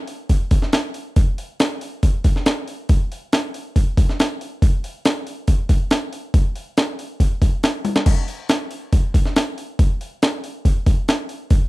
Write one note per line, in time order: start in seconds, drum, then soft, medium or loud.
0.07 open hi-hat medium
0.29 kick medium
0.29 open hi-hat medium
0.51 kick medium
0.51 open hi-hat medium
0.62 snare soft
0.73 snare loud
0.73 open hi-hat medium
0.94 open hi-hat medium
1.16 kick loud
1.16 open hi-hat medium
1.38 open hi-hat medium
1.60 snare loud
1.60 open hi-hat medium
1.81 open hi-hat medium
2.03 kick medium
2.03 open hi-hat medium
2.24 kick medium
2.24 open hi-hat medium
2.36 snare soft
2.46 snare loud
2.46 open hi-hat medium
2.67 open hi-hat medium
2.89 kick loud
2.89 open hi-hat medium
3.12 open hi-hat medium
3.32 snare loud
3.32 open hi-hat medium
3.54 open hi-hat medium
3.76 kick medium
3.76 open hi-hat medium
3.97 kick medium
3.97 open hi-hat medium
4.09 snare soft
4.20 snare loud
4.20 open hi-hat medium
4.41 open hi-hat medium
4.62 kick loud
4.62 open hi-hat medium
4.84 open hi-hat medium
5.05 snare loud
5.05 open hi-hat medium
5.27 open hi-hat medium
5.47 kick medium
5.47 open hi-hat medium
5.69 kick medium
5.69 open hi-hat medium
5.91 snare loud
5.91 open hi-hat medium
6.13 open hi-hat medium
6.34 kick loud
6.34 open hi-hat medium
6.56 open hi-hat medium
6.77 snare loud
6.77 open hi-hat medium
6.99 open hi-hat medium
7.20 kick medium
7.20 open hi-hat medium
7.42 kick medium
7.42 open hi-hat medium
7.63 snare loud
7.63 open hi-hat medium
7.85 open hi-hat medium
7.85 high tom medium
7.96 snare medium
8.06 kick loud
8.06 open hi-hat medium
8.06 crash medium
8.28 open hi-hat medium
8.49 snare loud
8.49 open hi-hat medium
8.71 open hi-hat medium
8.93 kick medium
8.93 open hi-hat medium
9.14 kick medium
9.14 open hi-hat medium
9.26 snare soft
9.36 snare loud
9.36 open hi-hat medium
9.58 open hi-hat medium
9.79 kick loud
9.79 open hi-hat medium
10.01 open hi-hat medium
10.22 snare loud
10.22 open hi-hat medium
10.44 open hi-hat medium
10.65 kick medium
10.65 open hi-hat medium
10.86 kick medium
10.86 open hi-hat medium
11.08 snare loud
11.08 open hi-hat medium
11.29 open hi-hat medium
11.50 kick loud
11.50 open hi-hat medium